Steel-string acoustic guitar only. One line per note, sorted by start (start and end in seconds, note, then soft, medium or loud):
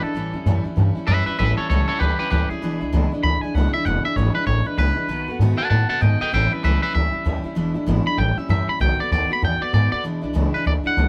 0.03 0.14 E3 soft
0.03 0.16 G#3 medium
0.03 0.16 D4 medium
0.03 0.15 E4 medium
0.15 0.34 A2 medium
0.15 0.34 E3 medium
0.15 0.35 G3 medium
0.15 0.34 C#4 medium
0.15 0.33 E4 medium
0.34 0.46 G3 soft
0.34 0.46 C#4 soft
0.34 0.46 E4 medium
0.46 0.65 A2 loud
0.46 0.65 E3 loud
0.46 0.65 G3 loud
0.46 0.64 C#4 loud
0.46 0.63 E4 loud
0.64 0.76 G3 soft
0.64 0.77 C#4 medium
0.64 0.77 E4 medium
0.76 0.95 E3 medium
0.76 0.96 G3 medium
0.76 0.95 C#4 medium
0.76 0.94 E4 medium
0.95 1.07 G3 medium
0.95 1.08 C#4 medium
0.95 1.07 E4 medium
1.07 1.26 A2 medium
1.07 1.27 E3 medium
1.07 1.27 G3 medium
1.07 1.27 C#4 medium
1.26 1.38 G3 soft
1.26 1.38 C#4 medium
1.26 1.38 E4 medium
1.38 1.57 A2 medium
1.38 1.58 E3 medium
1.38 1.58 G3 medium
1.38 1.57 C#4 loud
1.38 1.56 E4 medium
1.57 1.70 G3 soft
1.57 1.70 C#4 medium
1.57 1.69 E4 medium
1.70 1.89 A2 medium
1.70 1.89 E3 medium
1.70 1.89 G3 loud
1.70 1.88 C#4 medium
1.70 1.86 E4 medium
1.88 2.00 G3 soft
1.88 2.01 C#4 medium
1.88 2.00 E4 medium
2.00 2.19 E3 medium
2.00 2.20 G3 medium
2.00 2.19 C#4 medium
2.00 2.17 E4 medium
2.19 2.30 G3 soft
2.19 2.30 C#4 medium
2.19 2.31 E4 medium
2.30 2.50 A2 medium
2.30 2.50 E3 medium
2.30 2.50 G3 medium
2.30 2.50 C#4 medium
2.30 2.49 E4 medium
2.50 2.63 G3 soft
2.50 2.63 C#4 medium
2.50 2.62 E4 medium
2.62 2.81 E2 medium
2.62 2.81 B2 medium
2.62 2.81 E3 medium
2.62 2.81 G#3 medium
2.62 2.80 D4 loud
2.62 2.79 E4 loud
2.80 2.92 E3 soft
2.80 2.92 G#3 soft
2.80 2.93 D4 medium
2.80 2.93 E4 medium
2.92 3.12 E2 loud
2.92 3.12 B2 loud
2.92 3.12 E3 loud
2.92 3.12 G#3 loud
2.92 3.12 D4 loud
2.92 3.11 E4 loud
3.12 3.23 E3 medium
3.12 3.24 G#3 medium
3.12 3.25 D4 medium
3.12 3.24 E4 medium
3.24 3.43 E3 medium
3.24 3.43 G#3 medium
3.24 3.42 D4 medium
3.24 3.41 E4 medium
3.43 3.55 E3 soft
3.43 3.56 G#3 medium
3.43 3.55 D4 medium
3.43 3.55 E4 medium
3.55 3.74 E2 medium
3.55 3.74 B2 medium
3.55 3.75 E3 medium
3.55 3.74 G#3 medium
3.55 3.73 D4 loud
3.55 3.73 E4 medium
3.74 3.86 E3 soft
3.74 3.85 G#3 medium
3.74 3.86 D4 medium
3.74 3.86 E4 medium
3.85 4.04 E2 medium
3.85 4.05 B2 medium
3.85 4.05 E3 medium
3.85 4.05 G#3 medium
3.85 4.05 D4 medium
3.85 4.04 E4 medium
4.05 4.17 E3 soft
4.05 4.17 G#3 soft
4.05 4.17 D4 soft
4.05 4.17 E4 medium
4.17 4.36 E2 medium
4.17 4.36 B2 medium
4.17 4.36 E3 medium
4.17 4.36 G#3 medium
4.17 4.34 D4 loud
4.17 4.33 E4 loud
4.34 4.45 E3 soft
4.34 4.45 G#3 medium
4.34 4.47 D4 medium
4.34 4.47 E4 medium
4.46 4.66 E3 medium
4.46 4.65 G#3 medium
4.46 4.63 E4 medium
4.64 4.77 E3 soft
4.64 4.77 G#3 soft
4.64 4.78 D4 medium
4.64 4.77 E4 medium
4.77 4.97 E2 medium
4.77 4.97 B2 medium
4.77 4.97 E3 medium
4.77 4.96 G#3 medium
4.77 4.95 D4 medium
4.77 4.94 E4 medium
4.95 5.08 E3 soft
4.95 5.09 G#3 soft
4.95 5.09 D4 soft
4.95 5.08 E4 medium
5.08 5.28 B2 medium
5.08 5.28 D#3 medium
5.08 5.28 A3 medium
5.08 5.28 B3 medium
5.08 5.27 F#4 medium
5.28 5.40 A3 medium
5.28 5.41 B3 medium
5.28 5.40 F#4 medium
5.41 5.59 B2 loud
5.41 5.59 D#3 loud
5.41 5.60 A3 loud
5.41 5.58 B3 loud
5.41 5.57 F#4 loud
5.58 5.69 A3 soft
5.58 5.70 B3 medium
5.58 5.70 F#4 medium
5.69 5.89 D#3 medium
5.69 5.90 A3 medium
5.69 5.89 B3 medium
5.69 5.87 F#4 medium
5.89 6.01 A3 soft
5.89 6.01 B3 medium
5.89 6.01 F#4 medium
6.01 6.20 B2 medium
6.01 6.20 D#3 medium
6.01 6.21 A3 medium
6.01 6.21 B3 medium
6.01 6.19 F#4 medium
6.20 6.33 A3 soft
6.20 6.33 B3 soft
6.20 6.32 F#4 medium
6.32 6.51 A2 medium
6.32 6.52 E3 medium
6.32 6.52 G3 medium
6.32 6.51 C#4 medium
6.32 6.49 E4 medium
6.50 6.63 G3 soft
6.50 6.63 C#4 medium
6.50 6.63 E4 medium
6.63 6.82 A2 medium
6.63 6.83 E3 medium
6.63 6.83 G3 loud
6.63 6.81 C#4 medium
6.63 6.80 E4 loud
6.81 6.93 G3 soft
6.81 6.93 C#4 soft
6.81 6.94 E4 medium
6.93 7.13 E3 medium
6.93 7.13 G3 medium
6.93 7.12 C#4 medium
6.93 7.11 E4 medium
7.12 7.25 G3 soft
7.12 7.25 C#4 soft
7.12 7.25 E4 medium
7.25 7.44 A2 medium
7.25 7.44 E3 medium
7.25 7.45 G3 medium
7.25 7.44 C#4 medium
7.25 7.43 E4 medium
7.44 7.56 G3 medium
7.44 7.56 C#4 medium
7.44 7.56 E4 medium
7.55 7.75 E2 medium
7.55 7.75 B2 medium
7.55 7.75 E3 loud
7.55 7.75 G#3 loud
7.55 7.74 D4 loud
7.55 7.73 E4 medium
7.74 7.86 E3 medium
7.74 7.87 G#3 medium
7.74 7.87 D4 medium
7.74 7.87 E4 medium
7.86 8.06 E2 loud
7.86 8.06 B2 loud
7.86 8.06 E3 loud
7.86 8.06 G#3 loud
7.86 8.06 D4 loud
7.86 8.04 E4 loud
8.05 8.16 E3 soft
8.05 8.18 G#3 soft
8.05 8.19 D4 medium
8.05 8.18 E4 medium
8.17 8.37 E3 medium
8.17 8.38 G3 medium
8.17 8.37 C#4 medium
8.17 8.36 E4 medium
8.37 8.49 G3 soft
8.37 8.50 C#4 medium
8.37 8.49 E4 medium
8.49 8.68 A2 medium
8.49 8.69 E3 medium
8.49 8.69 G3 medium
8.49 8.69 C#4 medium
8.49 8.68 E4 medium
8.69 8.81 G3 soft
8.69 8.81 C#4 medium
8.69 8.81 E4 medium
8.80 8.99 B2 medium
8.80 9.00 D#3 medium
8.80 9.00 A3 medium
8.80 9.00 B3 medium
8.80 8.98 F#4 medium
8.99 9.12 A3 medium
8.99 9.12 B3 medium
8.99 9.11 F#4 medium
9.12 9.31 B2 medium
9.12 9.31 D#3 medium
9.12 9.31 A3 medium
9.12 9.31 B3 medium
9.12 9.29 F#4 medium
9.31 9.42 A3 soft
9.31 9.43 B3 medium
9.31 9.42 F#4 medium
9.42 9.61 D#3 medium
9.42 9.62 A3 medium
9.42 9.62 B3 medium
9.42 9.60 F#4 medium
9.61 9.73 A3 soft
9.61 9.74 B3 medium
9.61 9.73 F#4 medium
9.73 9.92 B2 medium
9.73 9.92 D#3 medium
9.73 9.93 A3 medium
9.73 9.93 B3 loud
9.73 9.91 F#4 medium
9.92 10.04 A3 soft
9.92 10.05 B3 medium
9.92 10.04 F#4 medium
10.04 10.23 E2 medium
10.04 10.23 B2 medium
10.04 10.24 E3 medium
10.04 10.23 G#3 medium
10.04 10.22 D4 medium
10.04 10.20 E4 medium
10.22 10.33 E3 medium
10.22 10.34 G#3 medium
10.22 10.34 D4 medium
10.22 10.34 E4 medium
10.33 10.53 E2 medium
10.33 10.54 B2 medium
10.33 10.54 E3 loud
10.33 10.54 G#3 loud
10.33 10.53 D4 loud
10.33 10.51 E4 loud
10.52 10.63 E3 soft
10.52 10.64 G#3 soft
10.52 10.65 D4 medium
10.52 10.65 E4 medium
10.65 10.84 E3 medium
10.65 10.85 G#3 medium
10.65 10.84 D4 medium
10.65 10.83 E4 medium
10.84 10.97 E3 soft
10.84 10.97 G#3 soft
10.84 10.97 D4 soft
10.84 10.97 E4 medium
10.97 11.08 E2 medium
10.97 11.08 B2 medium
10.97 11.08 E3 medium
10.97 11.08 G#3 medium
10.97 11.08 D4 medium
10.97 11.08 E4 medium